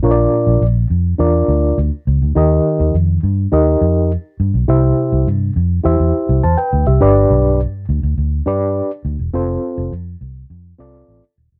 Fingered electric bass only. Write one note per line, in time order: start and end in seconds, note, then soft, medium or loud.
0.03 0.26 A#1 loud
0.47 0.58 A#1 medium
0.61 0.84 A#1 medium
0.90 1.13 F2 medium
1.19 1.42 E2 medium
1.48 1.71 D2 medium
1.78 1.89 D2 medium
2.07 2.18 C#2 medium
2.22 2.33 D2 medium
2.36 2.59 D#2 loud
2.80 2.91 D#2 loud
2.94 3.17 F2 medium
3.23 3.46 G2 medium
3.52 3.75 D#2 medium
3.81 4.15 F2 medium
4.40 4.51 G2 medium
4.54 4.65 B1 medium
4.69 4.91 C2 loud
5.12 5.24 C2 medium
5.27 5.50 G2 medium
5.56 5.79 F2 medium
5.85 5.96 E2 medium
6.00 6.11 E2 medium
6.29 6.40 C2 medium
6.44 6.55 E2 medium
6.73 6.84 D2 medium
6.87 6.98 C2 medium
7.02 7.24 G1 loud
7.30 7.64 B1 medium
7.89 8.00 D2 medium
8.03 8.14 D2 medium
8.18 8.40 D2 medium
8.47 8.80 G2 loud
9.05 9.16 D2 medium
9.19 9.30 E1 medium
9.34 9.56 F1 loud
9.78 9.89 F1 medium
9.92 10.15 F2 loud
10.21 10.44 C2 medium
10.50 10.73 F2 medium
10.79 11.02 C2 medium
11.08 11.20 A1 medium
11.38 11.49 D#1 medium
11.52 11.60 E1 medium